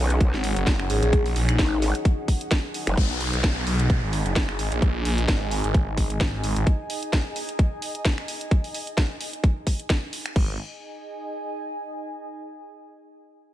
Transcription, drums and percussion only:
0.10 closed hi-hat medium
0.21 kick loud
0.21 closed hi-hat medium
0.34 snare soft
0.44 open hi-hat loud
0.56 closed hi-hat medium
0.67 kick loud
0.67 snare loud
0.67 closed hi-hat medium
0.80 finger snap medium
0.90 open hi-hat loud
1.03 closed hi-hat medium
1.13 kick loud
1.13 closed hi-hat medium
1.26 open hi-hat medium
1.36 open hi-hat loud
1.49 finger snap medium
1.49 closed hi-hat medium
1.59 kick loud
1.59 snare loud
1.59 closed hi-hat medium
1.82 snare soft
1.82 open hi-hat loud
1.95 closed hi-hat medium
2.05 kick loud
2.05 closed hi-hat medium
2.28 kick medium
2.28 open hi-hat loud
2.41 closed hi-hat medium
2.51 kick loud
2.51 snare loud
2.51 closed hi-hat medium
2.74 open hi-hat loud
2.87 finger snap medium
2.87 closed hi-hat medium
2.97 kick loud
2.97 closed hi-hat medium
3.21 open hi-hat loud
3.33 closed hi-hat medium
3.44 kick loud
3.44 snare loud
3.44 closed hi-hat medium
3.67 open hi-hat loud
3.80 closed hi-hat medium
3.90 kick loud
3.90 closed hi-hat medium
4.13 open hi-hat loud
4.26 closed hi-hat medium
4.36 kick loud
4.36 snare loud
4.36 closed hi-hat medium
4.49 finger snap medium
4.59 open hi-hat loud
4.72 closed hi-hat medium
4.82 kick loud
4.82 closed hi-hat medium
5.05 open hi-hat loud
5.18 closed hi-hat medium
5.28 kick loud
5.28 snare loud
5.28 closed hi-hat medium
5.51 open hi-hat loud
5.64 closed hi-hat medium
5.74 kick loud
5.74 closed hi-hat medium
5.97 kick medium
5.97 open hi-hat loud
6.10 closed hi-hat medium
6.21 kick loud
6.21 snare loud
6.21 closed hi-hat medium
6.44 open hi-hat loud
6.56 closed hi-hat medium
6.67 kick loud
6.67 closed hi-hat medium
6.90 open hi-hat loud
7.03 closed hi-hat medium
7.13 kick loud
7.13 snare loud
7.13 closed hi-hat soft
7.36 open hi-hat loud
7.49 closed hi-hat medium
7.59 kick loud
7.59 closed hi-hat medium
7.82 open hi-hat loud
7.95 closed hi-hat medium
8.05 kick loud
8.05 snare loud
8.05 closed hi-hat medium
8.18 finger snap medium
8.28 open hi-hat loud
8.41 closed hi-hat medium
8.51 kick loud
8.51 closed hi-hat soft
8.64 open hi-hat medium
8.74 open hi-hat loud
8.87 closed hi-hat medium
8.97 kick loud
8.97 snare loud
8.97 closed hi-hat soft
9.21 open hi-hat loud
9.33 closed hi-hat medium
9.44 kick loud
9.44 closed hi-hat medium
9.67 kick medium
9.67 open hi-hat loud
9.80 closed hi-hat medium
9.90 kick loud
9.90 snare loud
9.90 closed hi-hat medium
10.13 open hi-hat loud
10.26 finger snap medium
10.26 closed hi-hat medium
10.36 kick loud
10.36 crash medium

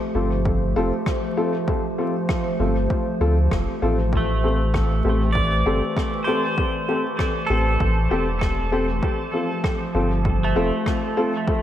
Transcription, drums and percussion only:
0.45 kick loud
1.06 kick loud
1.06 cross-stick medium
1.68 kick loud
2.29 kick loud
2.29 cross-stick medium
2.90 kick loud
3.51 kick loud
3.51 cross-stick medium
4.13 kick medium
4.74 kick loud
4.74 cross-stick medium
5.35 kick loud
5.97 kick loud
5.97 cross-stick medium
6.58 kick loud
7.19 kick loud
7.19 cross-stick medium
7.80 kick loud
8.41 kick medium
8.41 cross-stick medium
9.03 kick medium
9.64 kick loud
9.64 cross-stick medium
10.25 kick loud
10.86 kick medium
10.86 cross-stick medium
11.48 kick loud

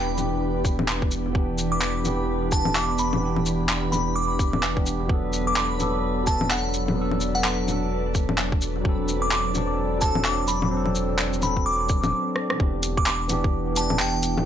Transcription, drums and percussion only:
0.18 low bongo soft
0.18 shaker medium
0.65 kick loud
0.65 shaker medium
0.79 low bongo medium
0.88 clap loud
0.88 shaker soft
1.02 kick loud
1.11 shaker medium
1.35 kick loud
1.58 shaker medium
1.82 clap loud
2.05 low bongo soft
2.05 shaker medium
2.52 kick loud
2.52 shaker medium
2.65 low bongo soft
2.75 clap loud
2.75 shaker soft
2.99 shaker medium
3.13 low bongo medium
3.37 low bongo soft
3.46 shaker medium
3.69 clap loud
3.93 low bongo soft
3.93 shaker medium
4.39 kick loud
4.39 shaker medium
4.53 low bongo soft
4.63 clap loud
4.63 shaker soft
4.77 kick loud
4.86 shaker medium
5.09 kick loud
5.33 shaker soft
5.56 clap loud
5.80 low bongo soft
5.80 shaker medium
6.27 kick medium
6.27 shaker soft
6.41 low bongo soft
6.50 clap loud
6.50 shaker soft
6.74 shaker soft
6.88 low bongo medium
7.12 low bongo soft
7.21 shaker soft
7.44 clap loud
7.68 low bongo soft
7.68 shaker medium
8.15 kick loud
8.15 shaker medium
8.29 low bongo medium
8.38 clap medium
8.38 shaker soft
8.52 kick loud
8.61 shaker medium
8.85 kick loud
9.08 shaker medium
9.31 clap medium
9.55 low bongo soft
9.55 shaker medium
10.01 kick medium
10.01 shaker medium
10.15 low bongo medium
10.25 clap loud
10.25 shaker soft
10.48 shaker medium
10.62 low bongo medium
10.86 low bongo soft
10.95 shaker medium
11.19 clap loud
11.33 shaker soft
11.42 low bongo soft
11.42 shaker medium
11.57 kick medium
11.89 kick loud
11.89 shaker medium
12.04 low bongo medium
12.04 shaker soft
12.36 cross-stick medium
12.50 cross-stick medium
12.60 kick loud
12.83 open hi-hat medium
12.83 shaker medium
12.97 kick loud
13.06 clap loud
13.30 open hi-hat medium
13.30 low bongo soft
13.30 shaker medium
13.44 kick loud
13.76 open hi-hat medium
13.76 shaker medium
13.90 low bongo medium
13.99 clap loud
13.99 shaker soft
14.23 open hi-hat medium
14.23 shaker medium
14.38 low bongo medium

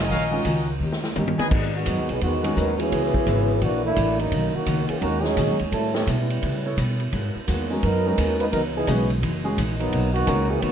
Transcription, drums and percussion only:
0.45 kick soft
0.45 hi-hat pedal medium
0.45 ride medium
0.92 snare soft
1.04 snare medium
1.15 hi-hat pedal medium
1.15 high tom medium
1.28 high tom medium
1.39 high tom medium
1.51 kick medium
1.51 crash medium
1.86 kick soft
1.86 hi-hat pedal medium
1.86 ride medium
2.09 ride soft
2.21 kick soft
2.21 ride medium
2.44 ride medium
2.57 kick soft
2.57 hi-hat pedal medium
2.80 ride soft
2.92 kick soft
2.92 ride medium
3.14 kick medium
3.27 kick soft
3.27 hi-hat pedal medium
3.27 ride medium
3.62 kick soft
3.62 ride medium
3.96 kick soft
3.96 hi-hat pedal medium
3.96 ride medium
4.19 ride medium
4.32 kick soft
4.32 ride medium
4.66 kick soft
4.66 hi-hat pedal medium
4.66 ride medium
4.89 ride medium
5.02 kick soft
5.02 ride medium
5.24 snare soft
5.37 kick soft
5.37 hi-hat pedal medium
5.37 ride medium
5.59 ride soft
5.72 kick soft
5.72 ride medium
5.95 snare medium
6.07 kick soft
6.07 hi-hat pedal medium
6.07 ride medium
6.30 ride medium
6.43 kick soft
6.43 ride medium
6.78 kick soft
6.78 hi-hat pedal medium
6.78 ride medium
7.00 ride soft
7.12 kick soft
7.12 ride medium
7.48 kick soft
7.48 hi-hat pedal medium
7.48 ride medium
7.83 kick soft
7.83 ride medium
8.18 kick soft
8.18 hi-hat pedal medium
8.18 ride medium
8.40 ride soft
8.53 kick soft
8.53 ride medium
8.87 kick soft
8.87 hi-hat pedal medium
8.87 ride medium
9.10 ride soft
9.23 kick soft
9.23 ride medium
9.58 kick soft
9.58 hi-hat pedal medium
9.58 ride medium
9.80 ride soft
9.93 kick soft
9.93 ride medium
10.15 ride medium
10.27 kick soft
10.27 hi-hat pedal medium
10.27 ride medium
10.62 kick soft
10.62 ride medium

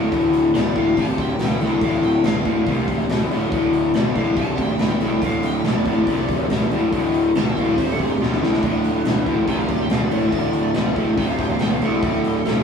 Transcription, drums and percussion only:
0.12 kick medium
0.12 open hi-hat medium
0.33 open hi-hat medium
0.55 snare loud
0.55 open hi-hat medium
0.76 kick medium
0.76 open hi-hat soft
0.97 kick medium
0.97 open hi-hat medium
1.18 kick medium
1.18 open hi-hat medium
1.39 snare loud
1.39 open hi-hat medium
1.61 snare soft
1.61 open hi-hat medium
1.81 kick medium
1.81 open hi-hat medium
2.03 open hi-hat soft
2.24 snare loud
2.24 open hi-hat medium
2.45 kick medium
2.45 open hi-hat medium
2.66 kick medium
2.66 open hi-hat medium
2.88 kick medium
2.88 open hi-hat medium
3.09 snare loud
3.09 open hi-hat medium
3.31 snare soft
3.31 open hi-hat soft
3.52 kick loud
3.52 open hi-hat medium
3.73 open hi-hat soft
3.94 snare loud
3.94 open hi-hat medium
4.16 kick medium
4.16 open hi-hat soft
4.37 kick medium
4.37 open hi-hat medium
4.58 kick medium
4.58 open hi-hat medium
4.79 snare loud
4.79 open hi-hat medium
5.01 open hi-hat medium
5.22 kick medium
5.22 open hi-hat medium
5.43 open hi-hat medium
5.65 snare loud
5.65 open hi-hat medium
5.86 kick medium
5.86 open hi-hat soft
6.07 kick medium
6.07 open hi-hat medium
6.29 kick medium
6.29 open hi-hat medium
6.50 snare loud
6.50 open hi-hat medium
6.71 open hi-hat medium
6.92 kick medium
6.92 open hi-hat medium
7.14 open hi-hat medium
7.35 snare loud
7.35 open hi-hat medium
7.57 kick medium
7.57 open hi-hat soft
7.78 kick medium
7.78 open hi-hat medium
7.99 kick medium
7.99 open hi-hat medium
8.23 snare medium
8.33 snare soft
8.44 snare medium
8.54 snare medium
8.63 kick loud
8.63 open hi-hat medium
8.84 open hi-hat medium
9.05 snare loud
9.05 open hi-hat medium
9.26 kick medium
9.26 open hi-hat soft
9.48 kick medium
9.48 open hi-hat medium
9.68 kick medium
9.68 open hi-hat medium
9.90 snare loud
9.90 open hi-hat medium
10.11 open hi-hat medium
10.32 kick medium
10.32 open hi-hat medium
10.53 open hi-hat medium
10.75 snare loud
10.75 open hi-hat medium
10.96 kick medium
10.96 open hi-hat medium
11.18 kick medium
11.18 open hi-hat medium
11.38 kick medium
11.38 open hi-hat medium
11.59 snare loud
11.59 open hi-hat medium
11.82 open hi-hat medium
12.03 kick loud
12.03 open hi-hat medium
12.25 open hi-hat medium
12.45 snare loud
12.45 open hi-hat medium

